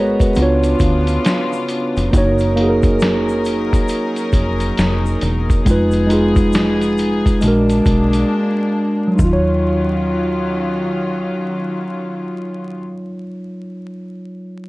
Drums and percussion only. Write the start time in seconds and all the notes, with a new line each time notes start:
0.20 kick, closed hi-hat, shaker
0.35 closed hi-hat, shaker
0.63 closed hi-hat, shaker
0.79 kick, closed hi-hat, shaker
1.07 closed hi-hat, shaker
1.25 snare, closed hi-hat, shaker
1.53 shaker
1.68 closed hi-hat, shaker
1.97 closed hi-hat, shaker
2.13 kick, closed hi-hat, shaker
2.38 closed hi-hat, shaker
2.57 closed hi-hat
2.83 kick, closed hi-hat, shaker
3.00 snare, closed hi-hat, shaker
3.29 shaker
3.45 closed hi-hat, shaker
3.73 kick, closed hi-hat, shaker
3.88 closed hi-hat, shaker
4.16 closed hi-hat, shaker
4.33 kick, closed hi-hat, shaker
4.60 closed hi-hat, shaker
4.78 snare, closed hi-hat, shaker
5.06 shaker
5.21 closed hi-hat, shaker
5.50 kick, closed hi-hat, shaker
5.66 kick, closed hi-hat, shaker
5.91 closed hi-hat, shaker
6.10 closed hi-hat, shaker
6.36 kick, closed hi-hat, shaker
6.53 snare, closed hi-hat, shaker
6.81 closed hi-hat, shaker
6.98 closed hi-hat, shaker
7.26 kick, closed hi-hat, shaker
7.41 closed hi-hat, shaker
7.69 closed hi-hat, shaker
7.86 kick, closed hi-hat, shaker
8.13 closed hi-hat, shaker
9.19 kick, shaker